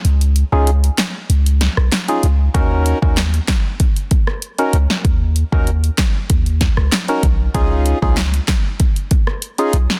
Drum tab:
HH |xxx-xxx-xxx-xxx-|x-x-xxx-xxx-xxx-|x-x-xxx-xxx-xxx-|x-x-xxx-xxx-xxx-|
CP |------x-----x---|----x-x---------|------x-----x---|----x-x---------|
SD |------o---oro---|----o-o----r---o|------o---oro---|----o-o----r---o|
BD |----------------|o--o--o-o-o-----|o--o--o-o-o---o-|o--o--o-o-o-----|